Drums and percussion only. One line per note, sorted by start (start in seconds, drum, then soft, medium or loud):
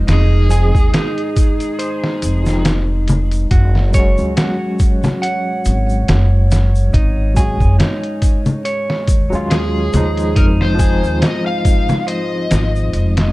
0.08 snare loud
0.08 closed hi-hat medium
0.08 shaker soft
0.50 closed hi-hat medium
0.50 shaker medium
0.75 kick loud
0.75 shaker soft
0.94 snare loud
0.94 closed hi-hat medium
0.94 shaker soft
1.18 closed hi-hat soft
1.36 kick loud
1.36 closed hi-hat medium
1.36 shaker medium
1.60 closed hi-hat soft
1.60 shaker medium
1.79 closed hi-hat medium
1.79 shaker soft
2.04 snare soft
2.22 closed hi-hat medium
2.22 shaker loud
2.46 snare soft
2.46 shaker medium
2.65 snare loud
2.65 closed hi-hat medium
2.65 shaker soft
3.08 closed hi-hat medium
3.08 low conga medium
3.08 shaker medium
3.31 closed hi-hat soft
3.31 shaker medium
3.51 kick loud
3.51 closed hi-hat medium
3.51 shaker soft
3.75 snare soft
3.94 kick loud
3.94 closed hi-hat medium
3.94 shaker loud
4.18 shaker soft
4.37 snare loud
4.37 closed hi-hat loud
4.37 shaker soft
4.79 kick loud
4.79 closed hi-hat medium
4.79 shaker medium
5.04 snare soft
5.04 low conga medium
5.04 shaker medium
5.23 closed hi-hat medium
5.23 shaker soft
5.65 closed hi-hat medium
5.65 shaker loud
5.89 shaker medium
6.08 snare loud
6.08 closed hi-hat medium
6.08 shaker soft
6.51 snare medium
6.51 closed hi-hat medium
6.51 shaker loud
6.75 shaker medium
6.93 kick loud
6.93 closed hi-hat medium
6.93 shaker soft
7.36 kick loud
7.36 closed hi-hat medium
7.36 shaker medium
7.60 kick loud
7.60 shaker soft
7.80 snare loud
7.80 closed hi-hat medium
7.80 shaker soft
8.03 closed hi-hat soft
8.22 kick medium
8.22 closed hi-hat medium
8.22 shaker medium
8.46 closed hi-hat soft
8.46 low conga medium
8.46 shaker medium
8.65 closed hi-hat medium
8.65 shaker soft
8.90 snare medium
9.07 kick medium
9.07 closed hi-hat medium
9.07 shaker loud
9.33 shaker medium
9.51 snare loud
9.51 closed hi-hat medium
9.51 shaker soft
9.93 closed hi-hat medium
9.93 low conga medium
9.93 shaker loud
10.17 closed hi-hat soft
10.17 shaker medium
10.36 kick loud
10.36 closed hi-hat medium
10.36 shaker soft
10.61 snare soft
10.79 kick medium
10.79 closed hi-hat medium
10.79 shaker medium
11.04 shaker soft
11.22 snare loud
11.22 closed hi-hat medium
11.22 shaker soft
11.65 kick loud
11.65 closed hi-hat medium
11.65 shaker loud
11.89 snare soft
11.89 low conga medium
11.89 shaker soft
12.08 closed hi-hat medium
12.08 shaker soft
12.51 snare loud
12.51 closed hi-hat medium
12.51 shaker medium
12.76 shaker soft
12.93 closed hi-hat medium
12.93 shaker soft
13.17 snare loud
13.17 closed hi-hat medium